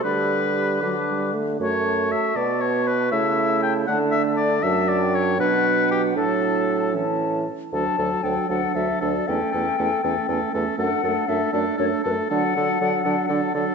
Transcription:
0.03 D3 G3 G4 B4 B5
0.82 D3 F#3 D4 D6
1.08 G3
1.34 A3
1.59 F#2 A3 F#4 C#5 A5
2.12 E5
2.36 B2 B3 F#4 D5
2.61 C#5
2.88 B4
3.12 C#3 A3 E4 E5 A5
3.63 G5
3.87 D3 A3 D4 F#5 A5
4.11 E5
4.37 D5
4.63 F#2 F#3 D4 E5 A5
4.89 D5
5.03 G5
5.15 C#5
5.39 B2 F#3 D4 B4 F#5
5.91 G4
6.16 A2 F#3 D4 A4 A5
6.93 E3 C#4 A5
7.72 D2 F#3 D4 A4 A5
7.98 D2 F#3 D4 A4
8.24 D2 F#3 D4 A4 G5
8.49 D2 F#3 D4 A4 F#5
8.75 D2 F#3 D4 A4 E5
9.01 D2 F#3 D4 A4 D5
9.28 E2 A3 C#4 A4 G5
9.52 E2 A3 C#4 A4
9.78 E2 A3 C#4 A4
10.03 E2 A3 C#4 A4
10.28 E2 A3 C#4 A4
10.53 E2 A3 C#4 A4
10.78 F#2 A3 D4 A4 F#5
11.02 F#2 A3 D4 A4
11.27 F#2 A3 D4 A4 E5
11.53 F#2 A3 D4 A4 D5
11.78 F#2 A3 D4 A4 C#5
12.04 F#2 A3 D4 A4 B4
12.30 D3 F#3 D4 A4 F#5
12.56 D3 F#3 D4 A4
12.80 D3 F#3 D4 A4
13.04 D3 F#3 D4 A4
13.28 D3 F#3 D4 A4
13.54 D3 F#3 D4 A4

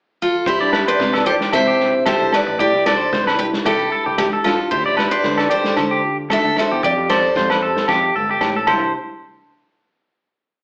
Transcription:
0.22 F4 A4
0.46 C2 C3 G3 E4 G4 C5, kick, muted conga
0.61 G2 D5
0.73 D4 B4, snare, low agogo
0.88 B4 C5 D5
1.00 C3 E3, kick, snare, high conga
1.13 A4, snare, low agogo
1.26 E4 G4 A4 C5, muted conga
1.41 snare
1.52 G2 C3 C5 E5, kick, snare, muted conga, high conga, low agogo
1.67 G4
1.80 G3, snare
2.06 E3 D4 G4 A4 C5, kick, snare, high conga, low agogo
2.21 C2
2.32 B4 D5, snare, low agogo
2.47 A1, muted clean electric guitar stroke
2.59 A2 C3 G3 G4 D5, kick, muted conga
2.73 C2
2.86 D4 A4 C5 D5, snare, low agogo
3.13 C2 E3 C5, kick, snare, high conga
3.22 B4
3.27 B4, snare, low agogo
3.39 E4 G4 B4, muted clean electric guitar stroke, muted conga
3.53 snare
3.65 C2 G2 E4 G4 A4, kick, snare, low agogo
3.92 G3 A4, muted conga
4.06 C2 G4
4.18 E3 D4 E4 G4, kick, snare, high conga, low agogo
4.33 A4
4.44 G2 F4 A4, snare, low agogo
4.71 D2 D3 D4 E4 F4 G4 C5, kick, muted conga
4.86 A1 D5
4.97 F4 B4, snare, low agogo
5.11 B4 C5 D5
5.24 D3 D4, kick, snare, high conga
5.38 A4, snare, low agogo
5.50 G4 A4 C5, muted conga
5.64 snare
5.77 D3, muted nylon-string guitar stroke, kick, snare, muted conga, high conga, low agogo
5.91 G4
6.04 F4
6.30 D4 A4 E5, kick, snare, high conga, low agogo
6.44 D2
6.56 A4 C5, snare, low agogo
6.72 E2 G4
6.83 F2 G3 G4 D5, kick
6.97 F2
7.09 C4 A4 C5 D5, snare, low agogo
7.36 F2 F3 C5, kick, snare, high conga
7.50 B4, snare, low agogo
7.62 G4 A4, muted conga
7.77 snare
7.88 F2 C3 G4, kick, snare, low agogo
8.16 G1 G3 A4, muted conga, high conga
8.31 G4
8.41 A1 A2, kick, snare, high conga, low agogo
8.56 A4
8.67 C2 C3 E3 C5, kick, crash, muted conga, low agogo
8.71 G3 D4 E4

